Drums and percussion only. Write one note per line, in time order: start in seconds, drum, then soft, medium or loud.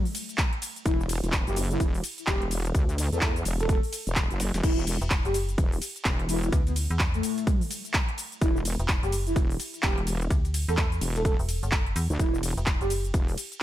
0.05 open hi-hat medium
0.05 shaker soft
0.15 closed hi-hat medium
0.15 open hi-hat loud
0.15 ride medium
0.15 shaker medium
0.29 closed hi-hat medium
0.29 shaker soft
0.38 kick loud
0.38 snare loud
0.38 clap loud
0.38 closed hi-hat medium
0.38 shaker soft
0.53 closed hi-hat soft
0.62 closed hi-hat medium
0.62 open hi-hat loud
0.62 ride medium
0.62 shaker medium
0.76 closed hi-hat medium
0.76 shaker soft
0.86 kick loud
0.86 closed hi-hat medium
0.86 closed hi-hat loud
0.86 shaker soft
1.01 shaker soft
1.09 closed hi-hat medium
1.09 open hi-hat loud
1.09 ride medium
1.09 shaker medium
1.24 closed hi-hat medium
1.24 closed hi-hat soft
1.24 shaker soft
1.32 kick loud
1.32 snare loud
1.32 clap loud
1.32 closed hi-hat medium
1.32 closed hi-hat loud
1.32 shaker soft
1.47 closed hi-hat soft
1.47 shaker soft
1.56 closed hi-hat medium
1.56 open hi-hat loud
1.56 ride medium
1.56 shaker medium
1.71 closed hi-hat medium
1.71 shaker soft
1.80 kick loud
1.80 closed hi-hat medium
1.80 shaker soft
1.94 open hi-hat medium
1.94 shaker soft
2.04 closed hi-hat medium
2.04 open hi-hat loud
2.04 ride medium
2.04 shaker medium
2.18 closed hi-hat medium
2.18 shaker soft
2.27 kick loud
2.27 snare loud
2.27 clap loud
2.27 closed hi-hat medium
2.27 shaker soft
2.42 closed hi-hat soft
2.51 closed hi-hat medium
2.51 open hi-hat loud
2.51 ride medium
2.51 shaker medium
2.65 closed hi-hat medium
2.65 shaker soft
2.75 kick loud
2.75 closed hi-hat medium
2.75 shaker soft
2.89 closed hi-hat soft
2.89 shaker soft
2.98 closed hi-hat medium
2.98 open hi-hat loud
2.98 ride medium
2.98 shaker medium
3.12 closed hi-hat medium
3.12 shaker soft
3.21 kick loud
3.21 snare loud
3.21 clap loud
3.21 closed hi-hat medium
3.21 shaker soft
3.36 closed hi-hat soft
3.36 shaker soft
3.45 closed hi-hat medium
3.45 open hi-hat loud
3.45 ride medium
3.45 shaker medium
3.60 closed hi-hat medium
3.60 closed hi-hat soft
3.60 shaker soft
3.69 kick loud
3.69 closed hi-hat medium
3.69 shaker soft
3.83 open hi-hat medium
3.83 shaker soft
3.93 closed hi-hat medium
3.93 open hi-hat loud
3.93 ride medium
3.93 shaker medium
4.07 closed hi-hat medium
4.07 shaker soft
4.16 kick loud
4.16 snare loud
4.16 clap loud
4.16 closed hi-hat medium
4.16 shaker soft
4.31 closed hi-hat soft
4.31 shaker soft
4.40 snare loud
4.40 closed hi-hat medium
4.40 open hi-hat loud
4.40 ride medium
4.40 shaker medium
4.54 snare loud
4.54 closed hi-hat medium
4.54 shaker soft
4.63 kick loud
4.63 closed hi-hat medium
4.63 crash medium
4.63 shaker soft
4.79 shaker soft
4.87 closed hi-hat medium
4.87 open hi-hat loud
4.87 ride medium
4.87 shaker medium
5.01 closed hi-hat medium
5.01 closed hi-hat soft
5.01 shaker soft
5.10 kick loud
5.10 snare loud
5.10 clap loud
5.10 closed hi-hat medium
5.10 closed hi-hat loud
5.10 shaker soft
5.25 closed hi-hat soft
5.25 shaker soft
5.34 closed hi-hat medium
5.34 open hi-hat loud
5.34 ride medium
5.34 shaker medium
5.49 closed hi-hat medium
5.49 shaker soft
5.58 kick loud
5.58 closed hi-hat medium
5.58 shaker soft
5.72 open hi-hat medium
5.72 shaker soft
5.82 closed hi-hat medium
5.82 open hi-hat loud
5.82 ride medium
5.82 shaker medium
5.96 closed hi-hat medium
5.96 shaker soft
6.05 kick loud
6.05 snare loud
6.05 clap loud
6.05 closed hi-hat medium
6.05 shaker soft
6.19 closed hi-hat soft
6.29 closed hi-hat medium
6.29 open hi-hat loud
6.29 ride medium
6.29 shaker medium
6.43 closed hi-hat medium
6.43 shaker soft
6.52 kick loud
6.52 closed hi-hat medium
6.52 shaker soft
6.67 closed hi-hat soft
6.67 shaker soft
6.76 closed hi-hat medium
6.76 open hi-hat loud
6.76 ride medium
6.76 shaker medium
6.90 closed hi-hat medium
6.90 shaker soft
6.99 kick loud
6.99 snare loud
6.99 clap loud
6.99 closed hi-hat medium
6.99 shaker soft
7.14 closed hi-hat soft
7.14 shaker soft
7.23 closed hi-hat medium
7.23 open hi-hat loud
7.23 ride medium
7.23 shaker medium
7.38 closed hi-hat medium
7.38 closed hi-hat soft
7.38 shaker soft
7.47 kick loud
7.47 closed hi-hat medium
7.47 shaker soft
7.61 open hi-hat medium
7.61 shaker soft
7.71 closed hi-hat medium
7.71 open hi-hat loud
7.71 ride medium
7.71 shaker medium
7.85 closed hi-hat medium
7.85 shaker soft
7.94 kick loud
7.94 snare loud
7.94 clap loud
7.94 closed hi-hat medium
7.94 shaker soft
8.09 closed hi-hat soft
8.18 closed hi-hat medium
8.18 open hi-hat loud
8.18 ride medium
8.18 shaker medium
8.32 closed hi-hat medium
8.32 shaker soft
8.41 kick loud
8.41 closed hi-hat medium
8.41 closed hi-hat loud
8.41 shaker soft
8.57 shaker soft
8.65 closed hi-hat medium
8.65 open hi-hat loud
8.65 ride medium
8.65 shaker medium
8.79 closed hi-hat soft
8.79 shaker soft
8.88 kick loud
8.88 snare loud
8.88 clap loud
8.88 closed hi-hat medium
8.88 shaker soft
9.03 closed hi-hat soft
9.03 shaker soft
9.12 closed hi-hat medium
9.12 open hi-hat loud
9.12 ride medium
9.12 shaker medium
9.27 closed hi-hat medium
9.27 shaker soft
9.36 kick loud
9.36 closed hi-hat medium
9.36 shaker soft
9.50 open hi-hat medium
9.50 shaker soft
9.60 closed hi-hat medium
9.60 open hi-hat loud
9.60 ride medium
9.60 shaker medium
9.74 closed hi-hat medium
9.74 shaker soft
9.83 kick loud
9.83 snare loud
9.83 clap loud
9.83 closed hi-hat medium
9.83 shaker soft
9.98 closed hi-hat soft
10.07 closed hi-hat medium
10.07 open hi-hat loud
10.07 ride medium
10.07 shaker medium
10.21 closed hi-hat medium
10.21 shaker soft
10.30 kick loud
10.30 closed hi-hat medium
10.30 closed hi-hat loud
10.30 shaker soft
10.45 closed hi-hat soft
10.45 shaker soft
10.54 closed hi-hat medium
10.54 open hi-hat loud
10.54 ride medium
10.54 shaker medium
10.68 closed hi-hat soft
10.68 shaker soft
10.77 kick loud
10.77 snare loud
10.77 clap loud
10.77 closed hi-hat medium
10.77 shaker soft
10.92 closed hi-hat soft
10.92 shaker soft
11.01 closed hi-hat medium
11.01 open hi-hat loud
11.01 ride medium
11.01 shaker medium
11.16 closed hi-hat medium
11.16 closed hi-hat soft
11.16 shaker soft
11.25 kick loud
11.25 closed hi-hat medium
11.25 shaker soft
11.39 open hi-hat medium
11.39 shaker soft
11.49 closed hi-hat medium
11.49 open hi-hat loud
11.49 ride medium
11.49 shaker medium
11.63 closed hi-hat medium
11.63 shaker soft
11.72 kick loud
11.72 snare loud
11.72 clap loud
11.72 closed hi-hat medium
11.72 shaker soft
11.87 closed hi-hat soft
11.96 closed hi-hat medium
11.96 open hi-hat loud
11.96 ride medium
11.96 shaker medium
12.10 closed hi-hat medium
12.10 shaker soft
12.19 kick loud
12.19 closed hi-hat medium
12.19 shaker soft
12.34 shaker soft
12.43 closed hi-hat medium
12.43 open hi-hat loud
12.43 ride medium
12.43 shaker medium
12.57 closed hi-hat medium
12.57 closed hi-hat soft
12.57 shaker soft
12.66 kick loud
12.66 snare loud
12.66 clap loud
12.66 closed hi-hat medium
12.66 shaker soft
12.81 closed hi-hat soft
12.81 shaker soft
12.90 closed hi-hat medium
12.90 open hi-hat loud
12.90 ride medium
12.90 shaker medium
13.05 closed hi-hat medium
13.05 shaker soft
13.14 kick loud
13.14 closed hi-hat medium
13.14 shaker soft
13.28 open hi-hat medium
13.28 shaker soft
13.38 closed hi-hat medium
13.38 open hi-hat loud
13.38 ride medium
13.38 shaker medium
13.52 closed hi-hat medium
13.52 shaker soft